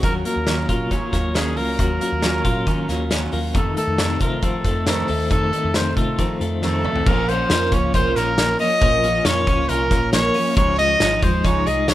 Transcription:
Already playing: F#4
0.03 D#2 D#3 F#3 C#4 F4 A#4, kick, closed hi-hat
0.25 F#3 A#3 C#4 F4 A#4, closed hi-hat
0.36 D#2
0.47 D#3 F#3 C#4 F4, snare, closed hi-hat
0.69 A#2 F#3 C#4 F4 A#4, kick, closed hi-hat
0.91 D#3 F#3 C#4 F4 C#5, kick, closed hi-hat
1.13 D#2 F#3 A#3 C#4 F4, kick, snare, closed hi-hat
1.34 D#3 F#3 C#4 F4 G#4, snare, closed hi-hat
1.57 C#2 F#3 A#3 C#4 F4 A#4, open hi-hat
1.78 D#2 D#3 F#3 C#4 F4, kick, closed hi-hat
2.01 F#3 A#3 C#4 F4, closed hi-hat
2.12 D#2
2.22 D#3 F#3 C#4 F4, snare, closed hi-hat
2.45 A#2 F#3 C#4 F4, kick, closed hi-hat
2.66 D#3 F#3 C#4 F4, kick, closed hi-hat
2.88 D#2 F#3 A#3 C#4 F4, snare, closed hi-hat
3.10 D#3 F#3 C#4 F4, snare, closed hi-hat
3.32 D#2 F#3 A#3 C#4 F4, open hi-hat
3.54 F2 C3 D#3 A3 D#4 A4, kick, closed hi-hat
3.76 D#3 A3 D#4 A4, closed hi-hat
3.87 F2
3.98 F2 C3 D#3 A3 C4 D#4, snare, closed hi-hat
4.20 C3 D#3 A3 D#4 F4 A#4, kick, closed hi-hat
4.42 C3 D#3 F3 A3 C4 D#4 A4, kick, closed hi-hat
4.64 F2 D#3 A3 D#4, kick, closed hi-hat
4.86 F2 C3 D#3 A3 C4 D#4 A4, snare, closed hi-hat
5.08 D#2 D#3 A3 D#4, open hi-hat
5.30 F2 C3 D#3 A3 D#4 A4, kick, closed hi-hat
5.52 D#3 A3 D#4, closed hi-hat
5.64 F2
5.74 F2 C3 D#3 A3 C4 D#4 C5, snare, closed hi-hat
5.96 C3 D#3 A3 D#4 F4 A4, kick, closed hi-hat
6.18 C3 D#3 F3 A3 C4 D#4, kick, closed hi-hat
6.40 F2 D#3 A3 D#4, closed hi-hat
6.62 F2 C3 D#3 A3 C4 D#4 A4, snare
6.84 D#3 A3 D#4, mid tom
6.96 floor tom
7.06 A#1 A#2 F3 A#3 C#4 A#4, kick, crash
7.28 F3 A#3 C#4 C5, closed hi-hat
7.50 F2 A#2 F3 A#3 C#4 F4, snare, closed hi-hat
7.71 C#2 F3 A#3 C#4 C#5, kick, closed hi-hat
7.94 C2 A#2 F3 A#3 C#4 F4 C5, kick, closed hi-hat
8.15 A#1 F3 A#3 C#4 A#4, snare, closed hi-hat
8.37 A#2 F3 A#3 C#4, snare, closed hi-hat
8.59 F3 A#3 C#4 D#5, open hi-hat
8.81 A#1 A#2 F3 A#3 C#4, kick, closed hi-hat
9.02 F3 A#3 C#4, closed hi-hat
9.24 F2 A#2 F3 A#3 C#4 F4 C#5, snare, closed hi-hat
9.47 C#2 F3 A#3 C#4, kick, closed hi-hat
9.69 C2 A#2 F3 A#3 C#4 F4 A#4, closed hi-hat
9.90 A#1 F3 A#3 C#4, kick, snare, closed hi-hat
10.12 A#2 F3 A#3 C#4 C#5, snare, closed hi-hat
10.34 F3 A#3 C#4, open hi-hat
10.56 C#2 C#3 F3 G#3 D#4 C#5, kick, closed hi-hat
10.78 F3 G#3 D#4 D#5, closed hi-hat
11.00 G#1 C#3 F3 G#3 C#4 D#4, snare, closed hi-hat
11.12 D#4
11.22 D#2 F3 G#3 D#4 C5, kick, closed hi-hat
11.44 C#2 C#3 F3 G#3 D#4 C#5, kick, closed hi-hat
11.66 C2 F3 G#3 D#4 D#5, closed hi-hat
11.88 C#3 F3 G#3 D#4 C#5, snare, closed hi-hat

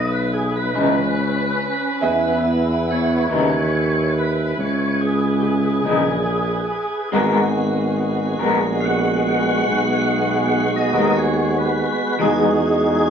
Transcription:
Already playing: B1 E4 G#4 B4 E5
0.12 B4
0.33 G#4
0.56 B4
0.74 C#2 C#3 E3 B3 C#4 D#4 B4
2.01 E2 B3 E4 G#4 B4 D#5
2.91 C#5
3.30 D#2 C#3 E3 B3 D#4
4.18 B4
4.57 C#2 C#5
5.01 G#4
5.40 G4
5.45 G#4
5.84 A#1 C#3 E3 B3 D#4
7.11 G#1 G#3 B3 F#4 G#4 A#4 B4 D#5
7.15 A#4
8.38 A#1 G#3 B3 F#4 A#4
8.80 F5
8.85 F#5
9.66 B1
10.76 D#5
10.92 D#2 G#3 B3 F#4 A#4
11.17 C#5
11.58 B4
12.19 E2 E3 G#3 B3 D#4 F#4 G#4 B4 D#5

